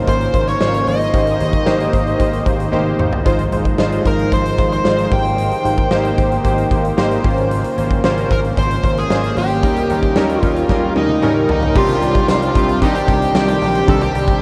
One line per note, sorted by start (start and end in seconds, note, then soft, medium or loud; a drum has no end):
0.00 1.11 C#3 medium
0.00 0.07 A#3 loud
0.00 3.22 A#3 medium
0.00 0.07 C#4 loud
0.00 3.22 D#4 medium
0.00 0.08 F4 loud
0.00 0.08 C5 loud
0.07 0.27 G#1 medium
0.07 0.25 A#3 medium
0.07 0.25 C#4 medium
0.07 0.25 F4 medium
0.07 0.26 C5 medium
0.07 0.48 C5 medium
0.07 kick medium
0.07 closed hi-hat medium
0.21 closed hi-hat medium
0.34 0.53 G#1 loud
0.34 0.52 A#3 medium
0.34 0.52 C#4 medium
0.34 0.52 F4 medium
0.34 0.52 C5 medium
0.34 kick medium
0.34 closed hi-hat medium
0.48 0.88 C#5 medium
0.48 closed hi-hat soft
0.60 0.80 G#1 medium
0.60 0.78 A#3 medium
0.60 0.78 C#4 medium
0.60 0.79 F4 medium
0.60 0.79 C5 loud
0.60 snare loud
0.74 closed hi-hat medium
0.87 1.06 G#1 loud
0.87 1.05 A#3 medium
0.87 1.05 C#4 medium
0.87 1.05 F4 medium
0.87 1.05 C5 medium
0.87 2.43 D#5 medium
0.87 open hi-hat medium
1.01 closed hi-hat soft
1.13 1.33 G#1 loud
1.13 3.24 D#3 medium
1.13 1.31 A#3 medium
1.13 1.31 D#4 medium
1.13 1.32 G4 medium
1.13 1.32 C5 medium
1.13 kick loud
1.13 closed hi-hat medium
1.27 closed hi-hat medium
1.40 1.59 G#1 medium
1.40 1.58 A#3 medium
1.40 1.58 D#4 medium
1.40 1.58 G4 medium
1.40 1.58 C5 medium
1.40 closed hi-hat medium
1.53 kick medium
1.53 closed hi-hat soft
1.66 1.86 G#1 medium
1.66 1.84 A#3 loud
1.66 1.84 D#4 loud
1.66 1.85 G4 loud
1.66 1.85 C5 loud
1.66 snare loud
1.80 closed hi-hat medium
1.92 2.12 G#1 medium
1.92 2.11 A#3 medium
1.92 2.11 D#4 medium
1.92 2.11 G4 medium
1.92 2.11 C5 medium
1.92 kick medium
1.92 closed hi-hat medium
2.07 closed hi-hat soft
2.19 2.39 G#1 loud
2.19 2.37 A#3 medium
2.19 2.38 D#4 medium
2.19 2.38 G4 medium
2.19 2.38 C5 loud
2.19 kick medium
2.19 closed hi-hat medium
2.33 closed hi-hat medium
2.45 2.65 G#1 medium
2.45 2.64 A#3 medium
2.45 2.64 D#4 medium
2.45 2.64 G4 medium
2.45 2.64 C5 medium
2.45 kick medium
2.45 closed hi-hat medium
2.60 closed hi-hat soft
2.72 2.92 G#1 medium
2.72 2.90 A#3 loud
2.72 2.90 D#4 loud
2.72 2.91 G4 loud
2.72 2.91 C5 loud
2.72 high tom soft
2.98 3.18 G#1 medium
2.98 3.17 A#3 medium
2.98 3.17 D#4 medium
2.98 3.17 G4 medium
2.98 3.17 C5 medium
2.98 mid tom medium
3.13 floor tom medium
3.25 3.45 G#1 loud
3.25 5.10 F3 medium
3.25 3.43 G#3 loud
3.25 5.10 G#3 medium
3.25 3.44 D#4 medium
3.25 5.10 D#4 medium
3.25 3.44 F4 loud
3.25 3.44 C5 loud
3.25 kick loud
3.25 closed hi-hat medium
3.39 closed hi-hat medium
3.52 3.71 G#1 medium
3.52 3.70 G#3 medium
3.52 3.70 D#4 medium
3.52 3.70 F4 medium
3.52 3.71 C5 medium
3.52 closed hi-hat medium
3.65 kick medium
3.65 closed hi-hat soft
3.78 3.98 G#1 medium
3.78 3.97 G#3 loud
3.78 3.97 D#4 medium
3.78 3.97 F4 loud
3.78 3.97 C5 loud
3.78 snare loud
3.92 closed hi-hat medium
4.05 4.25 G#1 medium
4.05 4.23 G#3 medium
4.05 4.23 D#4 medium
4.05 4.23 F4 medium
4.05 4.31 A#4 medium
4.05 4.24 C5 medium
4.05 kick medium
4.05 closed hi-hat medium
4.19 closed hi-hat soft
4.32 4.51 G#1 loud
4.32 4.50 G#3 medium
4.32 4.50 D#4 medium
4.32 4.50 F4 medium
4.32 4.50 C5 medium
4.32 4.72 C5 medium
4.32 kick medium
4.32 closed hi-hat medium
4.46 closed hi-hat medium
4.58 4.78 G#1 medium
4.58 4.76 G#3 medium
4.58 4.76 D#4 medium
4.58 4.77 F4 medium
4.58 4.77 C5 medium
4.58 kick medium
4.58 closed hi-hat medium
4.72 5.14 C5 medium
4.72 closed hi-hat soft
4.84 5.04 G#1 loud
4.84 5.02 G#3 medium
4.84 5.03 D#4 medium
4.84 5.03 F4 medium
4.84 5.03 C5 loud
4.84 snare loud
4.98 closed hi-hat medium
5.11 5.50 G#1 medium
5.11 7.22 D#3 medium
5.11 5.54 A#3 medium
5.11 7.22 A#3 medium
5.11 5.54 D#4 medium
5.11 5.54 G4 medium
5.11 9.59 C5 medium
5.11 5.54 C5 medium
5.11 6.68 G5 medium
5.11 kick loud
5.11 open hi-hat medium
5.25 closed hi-hat medium
5.38 closed hi-hat medium
5.51 closed hi-hat medium
5.64 5.84 G#1 medium
5.64 5.82 A#3 medium
5.64 5.83 D#4 medium
5.64 5.83 G4 medium
5.64 5.83 C5 medium
5.64 closed hi-hat medium
5.78 kick medium
5.78 closed hi-hat soft
5.91 6.10 G#1 medium
5.91 6.09 A#3 loud
5.91 6.09 D#4 loud
5.91 6.09 G4 loud
5.91 6.10 C5 loud
5.91 snare loud
6.05 closed hi-hat medium
6.17 6.37 G#1 medium
6.17 6.36 A#3 medium
6.17 6.36 D#4 medium
6.17 6.36 G4 medium
6.17 6.36 C5 loud
6.17 kick medium
6.17 closed hi-hat medium
6.32 closed hi-hat soft
6.44 6.64 G#1 loud
6.44 6.62 A#3 medium
6.44 6.62 D#4 medium
6.44 6.63 G4 medium
6.44 6.63 C5 loud
6.44 kick medium
6.44 closed hi-hat medium
6.58 closed hi-hat medium
6.71 6.90 G#1 loud
6.71 6.89 A#3 medium
6.71 6.89 D#4 medium
6.71 6.89 G4 medium
6.71 6.89 C5 medium
6.71 kick medium
6.71 closed hi-hat medium
6.85 closed hi-hat soft
6.97 7.17 G#1 loud
6.97 7.15 A#3 loud
6.97 7.15 D#4 loud
6.97 7.16 G4 loud
6.97 7.16 C5 loud
6.97 snare loud
7.11 closed hi-hat medium
7.24 7.63 G#1 medium
7.24 9.61 C#3 medium
7.24 7.67 A#3 medium
7.24 11.72 A#3 medium
7.24 7.67 C#4 medium
7.24 7.67 F4 medium
7.24 7.67 C5 loud
7.24 kick loud
7.24 open hi-hat medium
7.38 closed hi-hat soft
7.51 closed hi-hat medium
7.64 closed hi-hat medium
7.77 7.97 G#1 medium
7.77 7.95 A#3 medium
7.77 7.95 C#4 medium
7.77 7.96 F4 medium
7.77 7.96 C5 medium
7.77 closed hi-hat medium
7.91 kick medium
7.91 closed hi-hat soft
8.04 8.23 G#1 medium
8.04 8.22 A#3 loud
8.04 8.22 C#4 loud
8.04 8.22 F4 loud
8.04 8.22 C5 loud
8.04 snare loud
8.18 closed hi-hat medium
8.30 8.50 G#1 loud
8.30 8.48 A#3 medium
8.30 8.49 C#4 medium
8.30 8.49 F4 medium
8.30 8.39 A#4 medium
8.30 8.49 C5 medium
8.30 kick medium
8.30 closed hi-hat medium
8.44 closed hi-hat soft
8.57 8.76 G#1 loud
8.57 8.75 A#3 medium
8.57 8.75 C#4 medium
8.57 8.75 F4 medium
8.57 8.76 C5 medium
8.57 8.99 C5 loud
8.57 kick medium
8.57 closed hi-hat medium
8.71 closed hi-hat medium
8.84 9.03 G#1 loud
8.84 9.01 A#3 medium
8.84 9.02 C#4 medium
8.84 9.02 F4 medium
8.84 9.02 C5 medium
8.84 kick medium
8.84 closed hi-hat medium
8.97 9.35 G#4 medium
8.97 closed hi-hat soft
9.10 9.29 G#1 loud
9.10 9.28 A#3 loud
9.10 9.28 C#4 medium
9.10 9.28 F4 medium
9.10 9.29 C5 loud
9.10 snare loud
9.24 closed hi-hat medium
9.37 9.65 G#1 medium
9.37 9.54 A#3 medium
9.37 9.55 C#4 medium
9.37 9.55 F4 medium
9.37 10.41 G4 medium
9.37 9.55 C5 medium
9.37 open hi-hat medium
9.50 closed hi-hat medium
9.63 9.82 D#2 loud
9.63 11.74 D#3 medium
9.63 9.81 G3 medium
9.63 11.74 C#4 medium
9.63 9.81 C#4 medium
9.63 9.81 D#4 medium
9.63 11.74 G4 medium
9.63 9.82 A#4 loud
9.63 kick loud
9.63 closed hi-hat medium
9.76 closed hi-hat medium
9.89 10.09 D#2 medium
9.89 10.07 G3 medium
9.89 10.08 C#4 medium
9.89 10.08 D#4 medium
9.89 10.08 A#4 medium
9.89 closed hi-hat medium
10.03 kick medium
10.03 closed hi-hat soft
10.16 10.35 D#2 medium
10.16 10.34 G3 loud
10.16 10.34 C#4 loud
10.16 10.34 D#4 loud
10.16 10.35 A#4 loud
10.16 snare loud
10.29 closed hi-hat medium
10.41 10.62 D#2 loud
10.41 10.61 G3 medium
10.41 10.61 C#4 medium
10.41 10.61 D#4 medium
10.41 10.93 F4 medium
10.41 10.61 A#4 loud
10.41 kick medium
10.41 closed hi-hat medium
10.56 closed hi-hat soft
10.69 10.88 D#2 loud
10.69 10.87 G3 medium
10.69 10.87 C#4 medium
10.69 10.87 D#4 medium
10.69 10.88 A#4 loud
10.69 kick medium
10.69 snare medium
10.96 11.15 D#2 medium
10.96 11.14 G3 medium
10.96 11.14 C#4 medium
10.96 11.14 D#4 medium
10.96 11.50 D#4 loud
10.96 11.14 A#4 loud
10.96 high tom medium
11.09 high tom medium
11.22 11.42 D#2 loud
11.22 11.40 G3 loud
11.22 11.40 C#4 loud
11.22 11.40 D#4 loud
11.22 11.41 A#4 loud
11.22 mid tom medium
11.48 11.68 D#2 medium
11.48 11.67 G3 medium
11.48 11.67 C#4 medium
11.48 11.67 D#4 medium
11.48 11.75 D#4 medium
11.48 11.67 A#4 loud
11.48 floor tom medium
11.62 floor tom medium
11.75 11.95 C2 loud
11.75 12.55 C3 medium
11.75 11.93 D#3 medium
11.75 14.42 D#3 medium
11.75 11.93 G3 medium
11.75 12.57 G3 medium
11.75 11.93 C4 medium
11.75 12.53 C4 medium
11.75 11.94 D4 medium
11.75 12.26 F4 loud
11.75 11.94 G4 loud
11.75 14.42 C5 medium
11.75 13.86 D5 medium
11.75 14.42 G5 medium
11.75 kick loud
11.75 crash loud
11.89 closed hi-hat medium
12.02 12.21 C2 medium
12.02 12.20 D#3 medium
12.02 12.20 G3 medium
12.02 12.20 C4 medium
12.02 12.20 D4 medium
12.02 12.21 G4 medium
12.02 closed hi-hat medium
12.15 kick medium
12.15 closed hi-hat soft
12.28 12.48 C2 loud
12.28 12.46 D#3 medium
12.28 12.46 G3 medium
12.28 12.47 C4 medium
12.28 12.47 D4 medium
12.28 12.79 F4 loud
12.28 12.47 G4 medium
12.28 snare loud
12.28 tambourine medium
12.42 closed hi-hat medium
12.54 12.84 C2 loud
12.54 12.73 D#3 medium
12.54 12.73 G3 medium
12.54 12.81 G3 soft
12.54 12.81 C4 soft
12.54 12.73 C4 medium
12.54 12.73 D4 medium
12.54 12.74 G4 medium
12.54 kick loud
12.54 closed hi-hat medium
12.69 closed hi-hat soft
12.81 13.33 C3 medium
12.81 12.99 D#3 loud
12.81 12.99 G3 loud
12.81 13.36 G3 medium
12.81 13.00 C4 medium
12.81 13.36 C4 loud
12.81 13.00 D4 medium
12.81 12.96 D#4 loud
12.81 13.00 G4 loud
12.81 kick medium
12.81 closed hi-hat medium
12.95 13.35 G4 loud
12.95 closed hi-hat medium
13.08 13.27 C2 loud
13.08 13.26 D#3 medium
13.08 13.26 G3 medium
13.08 13.26 C4 medium
13.08 13.26 D4 medium
13.08 13.27 G4 medium
13.08 kick medium
13.08 closed hi-hat medium
13.22 closed hi-hat medium
13.34 13.54 C2 loud
13.34 13.86 C3 medium
13.34 13.52 D#3 medium
13.34 13.53 G3 medium
13.34 13.88 G3 medium
13.34 13.53 C4 medium
13.34 13.89 C4 medium
13.34 13.53 D4 medium
13.34 13.53 G4 medium
13.34 13.48 G4 loud
13.34 snare loud
13.34 tambourine medium
13.48 13.89 G4 loud
13.48 closed hi-hat medium
13.61 13.81 A#1 loud
13.61 13.79 D#3 medium
13.61 13.79 G3 medium
13.61 13.79 C4 medium
13.61 13.80 D4 medium
13.61 13.80 G4 medium
13.61 open hi-hat medium
13.75 closed hi-hat medium
13.87 14.07 C2 loud
13.87 14.42 C3 medium
13.87 14.06 D#3 loud
13.87 14.06 G3 medium
13.87 14.42 G3 medium
13.87 14.06 C4 medium
13.87 14.42 C4 medium
13.87 14.06 D4 medium
13.87 14.06 G4 loud
13.87 14.01 A4 loud
13.87 14.42 D5 medium
13.87 kick loud
13.87 closed hi-hat medium
14.01 14.42 G4 loud
14.01 closed hi-hat medium
14.14 14.34 C2 loud
14.14 14.32 D#3 medium
14.14 14.32 G3 medium
14.14 14.32 C4 medium
14.14 14.32 D4 medium
14.14 14.33 G4 medium
14.14 closed hi-hat medium
14.28 kick medium
14.28 closed hi-hat soft